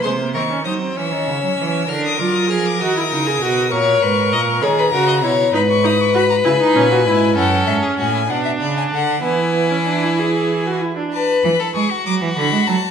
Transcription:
<<
  \new Staff \with { instrumentName = "Violin" } { \time 6/8 \key gis \phrygian \tempo 4. = 65 bis''8 cis'''8 dis'''8 e'''4. | eis'''16 dis'''16 d'''16 dis'''16 eis'''16 d'''16 dis'''4. | cis'''4. ais''4. | b''16 cis'''16 dis'''16 cis'''16 b''16 ais''16 gis''4. |
\key a \major fis''8 e''8 gis''8 fis''16 e''16 d''16 gis''16 fis''8 | gis''2~ gis''8 r8 | a''8 b''8 cis'''8 d'''8 b''8 a''8 | }
  \new Staff \with { instrumentName = "Violin" } { \time 6/8 \key gis \phrygian bis'8 ais'8 bis'8 cis''4. | ais'2. | cis''8 b'8 dis''8 cis''16 b'16 ais'16 dis''16 cis''8 | b'2. |
\key a \major a'8. gis'16 fis'16 e'16 d'4. | e'2~ e'8 r8 | b'8. a'16 gis'16 fis'4.~ fis'16 | }
  \new Staff \with { instrumentName = "Viola" } { \time 6/8 \key gis \phrygian gis16 ais16 bis16 cis'16 dis'16 bis16 cis'4. | d'8 eis'8 gis'8 fis'16 e'16 dis'16 gis'16 fis'8 | ais'4. gis'8 fis'8 e'8 | dis'8 dis'8 fis'8 e'16 dis'16 cis'16 fis'16 e'8 |
\key a \major cis'4. d'4. | b8. cis'16 d'16 e'16 gis'8. fis'16 e'16 d'16 | r2. | }
  \new Staff \with { instrumentName = "Cello" } { \clef bass \time 6/8 \key gis \phrygian bis,8 dis8 fis8 e16 dis16 cis16 fis16 e8 | d8 fis8 eis8 dis8 cis8 b,8 | ais,8 gis,8 ais,8 dis8 cis8 b,8 | gis,4. cis8 ais,8 gis,8 |
\key a \major fis,8 gis,8 a,8 b,8 cis8 d8 | e2~ e8 r8 | r8 e8 gis8 fis16 e16 d16 gis16 fis8 | }
>>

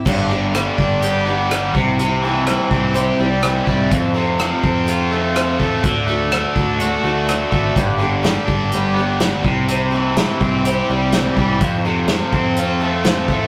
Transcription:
<<
  \new Staff \with { instrumentName = "Twelve-string acoustic guitar" } { \time 4/4 \key g \mixolydian \tempo 4 = 125 <g, d g b d' g'>8 <g b d' g'>8 <g b d' g'>8 <g b d' g'>8 <g, d g b d' g'>8 <g b d' g'>8 <g b d' g'>8 <c' e' g'>8 | <c g c' e' g'>8 <c' e' g'>8 <g c' e' g'>8 <c' e' g'>8 <c g c' e' g'>8 <c' e' g'>8 <g c' e' g'>8 <c' e' g'>8 | <f c' f' a'>8 <c' f' a'>8 <f c' f' a'>8 <c' f' a'>8 <f c' f' a'>8 <c' f' a'>8 <f c' f' a'>8 <c' f' a'>8 | <d a d' fis' a'>8 <d' fis' a'>8 <a d' fis' a'>8 <d' fis' a'>8 <d a d' fis' a'>8 <d' fis' a'>8 <a d' fis' a'>8 <d' fis' a'>8 |
<g, d g b d' g'>8 <g b d' g'>8 <g b d' g'>8 <g b d' g'>8 <g, d g b d' g'>8 <g b d' g'>8 <g b d' g'>8 <c' e' g'>8 | <c g c' e' g'>8 <c' e' g'>8 <g c' e' g'>8 <c' e' g'>8 <c g c' e' g'>8 <c' e' g'>8 <g c' e' g'>8 <c' e' g'>8 | <f c' f' a'>8 <c' f' a'>8 <f c' f' a'>8 <c' f' a'>8 <f c' f' a'>8 <c' f' a'>8 <f c' f' a'>8 <c' f' a'>8 | }
  \new Staff \with { instrumentName = "Overdriven electric guitar" } { \clef bass \time 4/4 \key g \mixolydian g,8 d8 g8 d'8 g'8 b8 g8 c8 | c8 e8 e8 c'8 g'8 g8 e8 g8 | f,8 c8 f8 c'8 f'8 a8 f8 a8 | d8 a8 d8 d'8 fis'8 a8 d8 a8 |
g,8 d8 g8 d'8 g'8 b8 g8 c8 | c8 e8 e8 c'8 g'8 g8 e8 g8 | f,8 c8 f8 c'8 f'8 a8 f8 a8 | }
  \new Staff \with { instrumentName = "Fingered electric bass" } { \clef bass \time 4/4 \key g \mixolydian g,,4. g,,2 c,8~ | c,4. c,4 c,4 c,8 | f,4. f,2 e,8 | d,4. d,4 d,4 aes,,8 |
g,,4. g,,2 c,8~ | c,4. c,4 c,4 c,8 | f,4. f,2 e,8 | }
  \new DrumStaff \with { instrumentName = "Drums" } \drummode { \time 4/4 <cymc bd>4 <hh ss>8 bd8 hh4 <hh ss>8 bd8 | hh4 <hh ss>8 bd8 hh4 <hh ss>8 bd8 | <hh bd>4 <hh ss>8 bd8 hh4 <hh ss>8 bd8 | <hh bd>4 <hh ss>8 bd8 hh4 <hh ss>8 bd8 |
<hh bd>4 <hh sn>8 bd8 hh4 <hh sn>8 bd8 | hh4 <hh sn>8 bd8 hh4 <hh sn>8 bd8 | <hh bd>4 <hh sn>8 bd8 hh4 <hh sn>8 bd8 | }
>>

